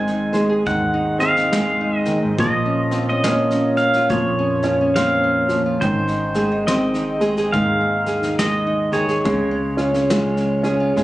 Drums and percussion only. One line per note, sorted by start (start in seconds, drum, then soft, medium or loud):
0.07 snare soft
0.34 snare soft
0.66 kick medium
0.66 snare soft
1.20 snare soft
1.36 snare soft
1.53 snare medium
2.05 snare soft
2.38 kick medium
2.38 snare soft
2.91 snare soft
3.24 snare medium
3.50 snare soft
3.77 snare soft
3.93 snare soft
4.09 kick medium
4.09 snare soft
4.63 snare soft
4.96 snare medium
5.49 snare soft
5.81 kick medium
5.81 snare soft
6.08 snare soft
6.34 snare soft
6.68 snare medium
6.94 snare soft
7.21 snare soft
7.37 snare soft
7.53 kick medium
7.53 snare soft
8.06 snare soft
8.23 snare soft
8.39 snare medium
8.92 snare soft
9.08 snare soft
9.25 kick medium
9.25 snare soft
9.78 snare soft
9.94 snare soft
10.10 snare medium
10.37 snare soft
10.64 snare soft
10.97 kick medium
10.97 snare soft